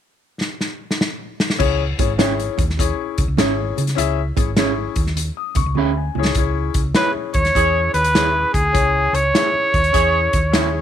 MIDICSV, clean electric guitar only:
0, 0, Header, 1, 2, 480
1, 0, Start_track
1, 0, Tempo, 596421
1, 1280, Time_signature, 4, 2, 24, 8
1, 8704, End_track
2, 0, Start_track
2, 0, Title_t, "Clean electric guitar"
2, 0, Program_c, 0, 27
2, 1757, Note_on_c, 0, 61, 75
2, 1763, Note_on_c, 0, 68, 73
2, 1768, Note_on_c, 0, 73, 86
2, 1772, Note_on_c, 0, 76, 83
2, 1863, Note_off_c, 0, 61, 0
2, 1866, Note_off_c, 0, 68, 0
2, 1869, Note_off_c, 0, 73, 0
2, 1871, Note_off_c, 0, 76, 0
2, 2720, Note_on_c, 0, 61, 80
2, 2727, Note_on_c, 0, 68, 85
2, 2735, Note_on_c, 0, 73, 81
2, 2738, Note_on_c, 0, 76, 90
2, 2824, Note_off_c, 0, 61, 0
2, 2828, Note_off_c, 0, 68, 0
2, 2832, Note_off_c, 0, 73, 0
2, 2833, Note_off_c, 0, 76, 0
2, 3679, Note_on_c, 0, 61, 72
2, 3685, Note_on_c, 0, 68, 83
2, 3690, Note_on_c, 0, 73, 74
2, 3692, Note_on_c, 0, 76, 73
2, 3784, Note_off_c, 0, 61, 0
2, 3786, Note_off_c, 0, 68, 0
2, 3789, Note_off_c, 0, 73, 0
2, 3790, Note_off_c, 0, 76, 0
2, 4645, Note_on_c, 0, 61, 79
2, 4648, Note_on_c, 0, 68, 86
2, 4653, Note_on_c, 0, 73, 83
2, 4659, Note_on_c, 0, 76, 88
2, 4746, Note_off_c, 0, 61, 0
2, 4748, Note_off_c, 0, 68, 0
2, 4750, Note_off_c, 0, 73, 0
2, 4753, Note_off_c, 0, 76, 0
2, 5594, Note_on_c, 0, 64, 75
2, 5602, Note_on_c, 0, 68, 73
2, 5608, Note_on_c, 0, 73, 89
2, 5615, Note_on_c, 0, 76, 75
2, 5701, Note_off_c, 0, 64, 0
2, 5705, Note_off_c, 0, 68, 0
2, 5708, Note_off_c, 0, 73, 0
2, 5711, Note_off_c, 0, 76, 0
2, 6559, Note_on_c, 0, 64, 75
2, 6567, Note_on_c, 0, 68, 72
2, 6571, Note_on_c, 0, 73, 76
2, 6571, Note_on_c, 0, 76, 78
2, 6664, Note_off_c, 0, 64, 0
2, 6667, Note_off_c, 0, 68, 0
2, 6669, Note_off_c, 0, 73, 0
2, 6670, Note_off_c, 0, 76, 0
2, 7526, Note_on_c, 0, 64, 73
2, 7531, Note_on_c, 0, 68, 70
2, 7538, Note_on_c, 0, 73, 83
2, 7540, Note_on_c, 0, 76, 81
2, 7627, Note_off_c, 0, 64, 0
2, 7629, Note_off_c, 0, 68, 0
2, 7633, Note_off_c, 0, 73, 0
2, 7634, Note_off_c, 0, 76, 0
2, 8484, Note_on_c, 0, 64, 74
2, 8490, Note_on_c, 0, 68, 81
2, 8490, Note_on_c, 0, 73, 84
2, 8497, Note_on_c, 0, 76, 86
2, 8586, Note_off_c, 0, 64, 0
2, 8589, Note_off_c, 0, 68, 0
2, 8589, Note_off_c, 0, 73, 0
2, 8593, Note_off_c, 0, 76, 0
2, 8704, End_track
0, 0, End_of_file